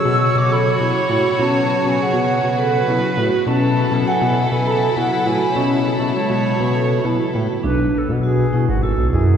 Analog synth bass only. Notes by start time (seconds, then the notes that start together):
0.05 B2
0.36 B2
0.80 B2
1.10 A2
1.39 B2
1.84 B2
2.13 B2
2.44 B2
2.87 B2
3.17 A2
3.47 B2
3.92 B2
4.21 B2
4.52 B2
4.97 B2
5.26 A2
5.55 B2
6.00 B2
6.30 B2
6.60 B2
7.05 B2
7.35 A2
7.64 B1
8.09 B2
8.54 B2
8.68 G#1
8.98 B1
9.13 F#2